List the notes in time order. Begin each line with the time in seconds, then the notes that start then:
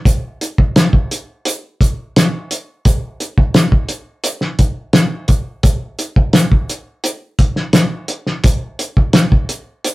0.05 kick, closed hi-hat, shaker
0.41 closed hi-hat, shaker
0.58 kick
0.76 snare, closed hi-hat, shaker
0.93 kick
1.11 closed hi-hat, shaker
1.45 closed hi-hat, shaker
1.81 kick, closed hi-hat, shaker
2.16 snare, closed hi-hat, shaker
2.51 closed hi-hat, shaker
2.85 kick, closed hi-hat, shaker
3.20 closed hi-hat, shaker
3.38 kick
3.54 snare, closed hi-hat, shaker
3.72 kick
3.89 closed hi-hat, shaker
4.24 closed hi-hat, shaker
4.41 snare
4.59 kick, closed hi-hat, shaker
4.93 snare, closed hi-hat, shaker
5.28 kick, closed hi-hat, shaker
5.63 kick, closed hi-hat, shaker
5.99 closed hi-hat, shaker
6.16 kick
6.33 snare, closed hi-hat, shaker
6.52 kick
6.69 closed hi-hat, shaker
7.04 closed hi-hat, shaker
7.39 kick, closed hi-hat
7.56 snare
7.73 snare, closed hi-hat, shaker
8.08 closed hi-hat
8.27 snare
8.44 kick, closed hi-hat, shaker
8.79 closed hi-hat, shaker
8.97 kick
9.13 snare, closed hi-hat, shaker
9.32 kick
9.49 closed hi-hat, shaker
9.84 closed hi-hat, shaker